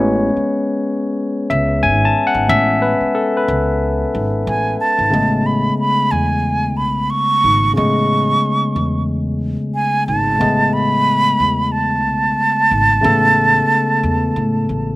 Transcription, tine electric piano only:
0.00 2.48 G#3 medium
0.00 2.48 B3 soft
0.00 2.49 C#4 medium
0.00 5.13 G#4 medium
0.00 2.82 B4 medium
0.00 0.35 C#5 loud
1.50 1.64 E5 medium
1.83 2.05 G#5 loud
2.05 2.27 A5 medium
2.27 2.49 F#5 loud
2.48 2.92 G#3 soft
2.48 2.93 B3 medium
2.48 2.93 C#4 medium
2.48 2.82 E5 loud
2.82 3.15 B4 medium
3.15 3.36 A4 medium
3.37 4.31 B4 medium
5.10 7.70 C#3 medium
5.10 7.71 A3 medium
5.10 7.71 B3 medium
5.14 7.72 G#3 medium
7.73 10.34 C#3 medium
7.73 10.35 A3 medium
7.73 10.35 B3 medium
7.78 10.36 G#3 medium
10.37 12.97 C#3 medium
10.37 12.98 A3 medium
10.37 12.99 B3 medium
10.42 13.00 G#3 medium
13.01 14.96 C#3 medium
13.01 14.96 A3 medium
13.01 14.96 B3 medium
13.05 14.96 A4 medium

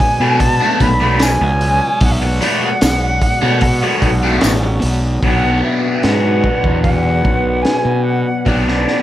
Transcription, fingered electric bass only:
0.20 0.58 B2 medium
0.81 1.37 B1 medium
1.41 1.79 C#2 medium
2.01 2.39 B1 loud
2.82 3.20 B1 medium
3.43 3.80 B2 medium
4.03 4.40 B1 medium
4.43 4.79 A1 medium
4.83 5.20 B1 medium
5.22 5.61 B1 medium
6.04 6.42 G#2 medium
6.64 7.21 E2 medium
7.25 7.62 B1 medium
7.85 8.23 B2 medium
8.47 8.84 B1 medium

